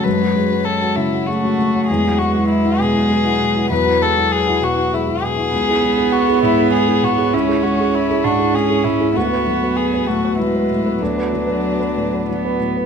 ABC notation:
X:1
M:3/4
L:1/16
Q:1/4=99
K:Bdor
V:1 name="Analog synth pad"
[F,Fc]12 | [F,FB]12- | [F,FB]12 | [G,Ec]12- |
[G,Ec]12 | [B,FB]12- | [B,FB]12 |]
V:2 name="Violin"
B4 A2 E2 F4 | G2 F2 E2 G6 | B2 A2 G2 F2 E2 G2- | G4 F2 E2 G2 F2 |
E2 F2 E2 F2 G2 E2 | F4 G2 F2 E4 | D8- D2 z2 |]
V:3 name="Grand piano"
F,, [CF] G, [CF]2 [CF] C, [CF] G, [CF] C, [CF] | E,, [EF] G, [EF]2 [EF] B,, [EF] G, [EF] B,, [EF] | E,, [EF] G, [EF]2 [EF] B,, [EF] G, [EF] B,, [EF] | C,, [EG] G, [EG]2 [EG] G,, [EG] G, E G,, [EG] |
C,, [EG] G, [EG]2 [EG] G,, [EG] G, [EG] G,, [EG] | D,, [FB] F, [FB]2 [FB] A,, [FB] F, [FB] A,, [FB] | D,, [FB] F, [FB]2 [FB] A,, [FB] F, [FB] A,, [FB] |]
V:4 name="Cello"
G,6 z2 A,4 | G,12 | F,6 z6 | B,12 |
C6 D2 C4 | B,6 A,2 G,4 | F,8 B,4 |]